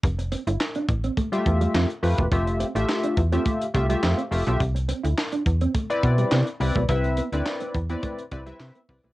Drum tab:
HH |xxxx-xxxxxxx-xox|xxxx-xxxxxxx-xox|xxxx-xxxxxxx-xox|xxxx-xxxxxxx-xox|
CP |----x-------x---|----x-------x---|----x-------x---|----x-------x---|
SD |----o-------o---|----o-------o---|----o-------o---|----o-------o---|
BD |o-----o-o-o----o|o-----o-o-o-----|o-----o-o-o----o|o-----o-o-o---o-|